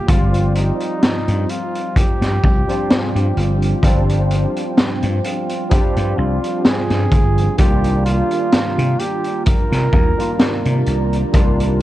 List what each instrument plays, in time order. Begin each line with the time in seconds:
Already playing: tine electric piano D#3 G3 A#3 D4 F4, flugelhorn G4
0.07 slap bass G1, tine electric piano F3 G3 C4 F4 D5, ambient pad F4 C5 G5, flugelhorn F4, kick, closed hi-hat
0.34 closed hi-hat
0.55 flugelhorn D#4, closed hi-hat
0.80 closed hi-hat
1.03 snare, closed hi-hat
1.28 slap bass G2, closed hi-hat
1.49 flugelhorn F4, closed hi-hat
1.75 closed hi-hat
1.96 flugelhorn G4, muted slap bass stroke, kick, closed hi-hat
2.22 slap bass G2, snare, closed hi-hat
2.44 slap bass C2, kick
2.67 tine electric piano F3 G3 C4 D4 F4, closed hi-hat
2.90 snare, closed hi-hat
3.01 flugelhorn G#4
3.11 slap bass G2, flugelhorn G4
3.16 closed hi-hat
3.20 flugelhorn F4
3.29 flugelhorn G4
3.37 slap bass G1, closed hi-hat
3.62 closed hi-hat
3.82 slap bass G1, tine electric piano F3 G3 C4 D4 F4, kick, closed hi-hat
4.09 closed hi-hat
4.31 closed hi-hat
4.56 closed hi-hat
4.77 snare, closed hi-hat
5.02 slap bass G2, closed hi-hat
5.24 flugelhorn F4, closed hi-hat
5.49 closed hi-hat
5.70 tine electric piano F3 G3 C4 D4 F4, flugelhorn G4, kick, closed hi-hat
5.97 slap bass G2, closed hi-hat
6.18 slap bass C2, flugelhorn F4
6.44 closed hi-hat
6.65 flugelhorn G#4, snare, closed hi-hat
6.90 slap bass G2, snare, closed hi-hat
7.12 slap bass G1, kick, closed hi-hat
7.38 closed hi-hat
7.57 slap bass C2, tine electric piano D#3 G3 A#3 D4 F4, flugelhorn G4, ambient pad D5 A#5, kick, closed hi-hat
7.84 closed hi-hat
8.05 flugelhorn F4, closed hi-hat
8.31 closed hi-hat
8.52 snare, closed hi-hat
8.78 slap bass C3, closed hi-hat
8.99 flugelhorn G4, closed hi-hat
9.24 closed hi-hat
9.46 flugelhorn A#4, muted slap bass stroke, kick, closed hi-hat
9.72 slap bass C3, snare, closed hi-hat
9.93 slap bass D#2, kick
10.17 tine electric piano D#3 G3 A#3 D4 F4, closed hi-hat
10.39 snare, closed hi-hat
10.65 slap bass C3, closed hi-hat
10.86 slap bass C2, closed hi-hat
11.13 closed hi-hat
11.32 slap bass C2, tine electric piano D#3 G3 A#3 D4 F4, kick, closed hi-hat
11.60 closed hi-hat